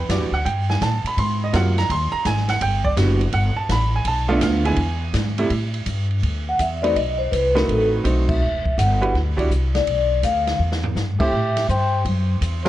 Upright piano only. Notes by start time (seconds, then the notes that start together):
0.09 E3 G3 D4 F#4 D5
0.34 F#5
0.45 G5
0.69 G#5
0.82 A5
1.07 B5
1.19 C6
1.44 D#5
1.53 C3 F#3 A#3 F4 F#5
1.78 A#5
1.91 C6
2.12 A#5
2.26 G#5
2.50 F#5
2.62 G5
2.85 D5
2.97 D3 G3 B3 F#4
3.34 F#5
3.56 A5
3.72 B5
3.96 G#5
4.08 A5
4.28 D3 A3 B3 F4 D5
4.38 E5
4.43 F5
4.64 D3 G#3 B3 E4 G#5
5.38 C3 G3 A3 E4
6.83 A3 C4 D#4 F#4 B4
7.55 A3 C4 D#4 F#4 B4
8.04 A3 C4 D#4 F#4 C5
9.01 G3 D4 E4 F#4 B4
9.37 G3 D4 E4 F#4 D5
11.20 A3 C4 E4 G4 C5
12.65 F#3 C4 D4